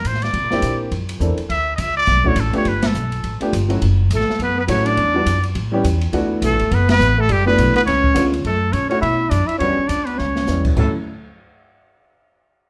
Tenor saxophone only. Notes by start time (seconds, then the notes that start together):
4.13 A3
4.42 B3
4.58 B3
4.69 C#4
4.85 D4
6.43 A3
6.72 B3
6.90 B3
7.18 A3
7.30 G3
7.46 B3
7.76 B3
7.88 C#4
8.45 A3
8.73 C#4
8.89 C#4
9.01 E4
9.29 D4
9.47 E4
9.58 C#4
9.87 D4
10.06 B3
10.18 C#4
10.77 A3